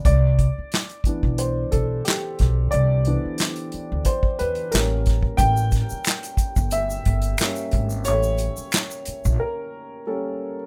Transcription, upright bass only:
X:1
M:4/4
L:1/16
Q:"Swing 16ths" 1/4=90
K:Am
V:1 name="Upright bass" clef=bass
C,,3 z4 B,,,3 B,,,2 z2 B,,,2 | C,,3 z4 D,, z2 E,,2 A,,,4 | A,,,3 z4 G,,,3 G,,,2 z2 ^G,,,2 | A,,,3 z4 _B,,, z8 |]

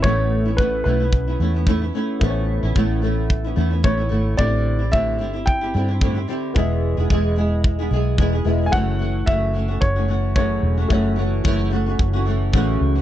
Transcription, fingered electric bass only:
X:1
M:4/4
L:1/16
Q:"Swing 16ths" 1/4=110
K:F#m
V:1 name="Fingered electric bass" clef=bass
A,,,6 B,,,4 E,,4 z2 | A,,,3 A,,, A,,,6 E,,2 A,,,2 G,,,2 | A,,,6 =G,,,4 =G,,4 z2 | E,,,3 E,,, E,,,6 B,,,2 E,,,2 E,,,2 |
F,,,4 F,,,4 F,,,6 E,,,2 | F,,,4 F,,,4 F,,,4 A,,,2 C,,2 |]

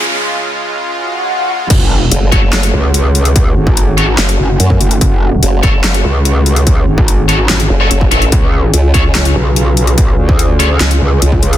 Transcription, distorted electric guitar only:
X:1
M:4/4
L:1/16
Q:1/4=145
K:F#m
V:1 name="Distorted electric guitar"
z16 | z6 [FAc] z8 z | z6 [FAc] z8 z | z6 [FAc] z8 z |
z6 [FAc] z4 [FAc] z2 [FAc] z | z6 [^EGc] z8 z | z6 [^EGc] z8 z |]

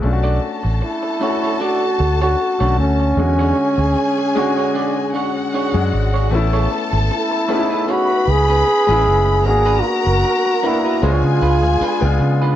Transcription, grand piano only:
X:1
M:4/4
L:1/16
Q:"Swing 16ths" 1/4=76
K:Bdor
V:1 name="Grand piano"
[A,CD^EF]4- [A,CDEF] z [A,CDF]6 z [D,A,CF]3 | [D,G,CF]4- [D,G,CF] z [D,G,CF]6 z [G,CDF]3 | [A,B,CE]4- [A,B,CE] z [A,B,C^DE]6 z [G,B,CE]3 | [^A,B,DF]4- [A,B,DF] z [A,B,DF]2 [G,B,D^E]4- [G,B,DE] [G,B,DE]3 |]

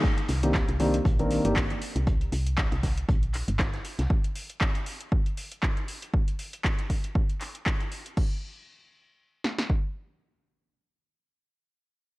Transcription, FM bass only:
X:1
M:4/4
L:1/16
Q:"Swing 16ths" 1/4=118
K:Cm
V:1 name="FM bass" clef=bass
z2 C,,3 C,,3 B,,,3 G,,,3 z C,,- | C,,2 C,,3 C,,3 B,,,3 G,,,3 z C,, | z16 | z16 |
z16 | z16 |]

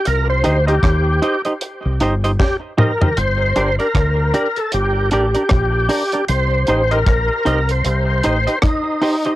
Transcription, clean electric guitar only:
X:1
M:4/4
L:1/16
Q:"Swing 16ths" 1/4=77
K:Gm
V:1 name="Clean electric guitar"
z2 [EGce] [EGce] z2 [EGce] [EGce] z2 [EGce] [EGce] z2 [EGce] [EGce] | z2 [DGBd] [DGBd] z2 [DGBd] z3 [DGBd] [DGBd] z2 [DGBd] [DGBd] | z2 [EGce] [EGce] z2 [EGce] z3 [EGce] [EGce] z2 [EGce] [EGce] |]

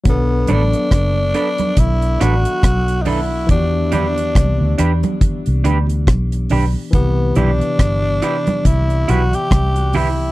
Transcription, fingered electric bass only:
X:1
M:4/4
L:1/16
Q:"Swing 16ths" 1/4=70
K:Bphr
V:1 name="Fingered electric bass" clef=bass
B,,,2 A,,, z F,,,2 z2 B,,,2 A,,, z B,,,4 | E,,4 C,, D,, E,, z2 C,, D,,2 B,,,2 B,,, z | C,,2 B,,, z G,,,2 z2 C,,2 B,,, z C,,4 |]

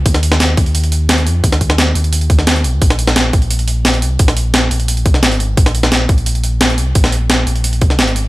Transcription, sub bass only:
X:1
M:4/4
L:1/16
Q:1/4=174
K:Cphr
V:1 name="Sub bass" clef=bass
E,,6 E,,8 F,,2 | E,,6 E,,8 B,,, E,, | B,,,6 B,,,8 C,,2 | B,,,6 B,,,4 C,,2 A,,,4 |
B,,,6 B,,,8 C,,2 | B,,,6 B,,,4 C,,2 A,,,4 |]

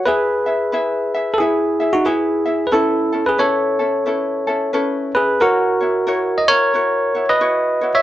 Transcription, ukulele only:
X:1
M:4/4
L:1/8
Q:"Swing" 1/4=90
K:E
V:1 name="Ukulele"
[EGBe] [EGe] [EGBe] [EGe] [EGBe] [EGe] [EGBe] [EGe] | [CEAB] [CEA] [CEAB] [CEA] [CEAB] [CEA] [CEAB] [CE] | [EF^Ac] [EFc] [EFAc] [EFc] [EFAc] [EFc] [EFc] [EFc] |]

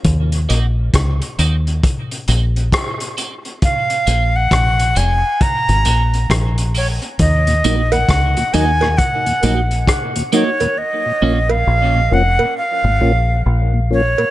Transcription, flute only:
X:1
M:4/4
L:1/16
Q:"Swing 16ths" 1/4=67
K:Ebm
V:1 name="Flute"
z16 | f3 g3 a2 b4 z2 d2 | e3 g3 a2 g4 z2 d2 | e3 f3 g2 f4 z2 d2 |]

